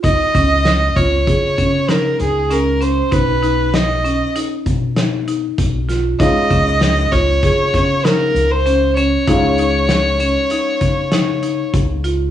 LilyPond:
<<
  \new Staff \with { instrumentName = "Violin" } { \time 5/4 \key des \major \tempo 4 = 97 ees''4. des''4. bes'8 aes'8 bes'8 c''8 | ces''4 ees''4 r2. | ees''4. des''4. bes'8. c''8. des''8~ | des''1 r4 | }
  \new Staff \with { instrumentName = "Marimba" } { \time 5/4 \key des \major ees'8 des'4 f'8 aes'8 des'8 ees'4 des'8 des'8 | ees'8 ees'4 des'8 ees'4 ees'8 ees'4 f'8 | ees'8 des'4 f'8 aes'8 des'8 ees'4 des'8 des'8 | ees'8 ees'4 des'8 ees'4 ees'8 ees'4 f'8 | }
  \new Staff \with { instrumentName = "Grand piano" } { \time 5/4 \key des \major r1 r4 | r1 r4 | <aes des' ees' f'>1~ <aes des' ees' f'>4 | <aes des' ees' f'>1~ <aes des' ees' f'>4 | }
  \new Staff \with { instrumentName = "Upright bass" } { \clef bass \time 5/4 \key des \major des,16 r16 des,4 des,8 des8 des4 des,4. | ces,2 r8 ces4. ces,4 | des,16 r16 des,4 des,8 des8 des4 des,4. | des,2 r8 des4. des,4 | }
  \new DrumStaff \with { instrumentName = "Drums" } \drummode { \time 5/4 <hh bd>8 <hh bd>8 <hh sn>8 <hh bd>8 <hh bd>8 <hh bd>8 <hh sn>8 hh8 hh8 hh8 | <hh bd>8 hh8 <hh sn>8 hh8 hh8 <hh bd>8 <hh sn>8 hh8 <hh bd>8 <hh sn>8 | <hh bd>8 <hh bd>8 <hh sn>8 <hh bd sn>8 <hh bd sn>8 <hh bd sn>8 <hh sn>8 hh8 hh8 hh8 | <hh bd>8 hh8 <hh sn>8 hh8 hh8 <hh bd>8 <hh sn>8 hh8 <hh bd>8 hh8 | }
>>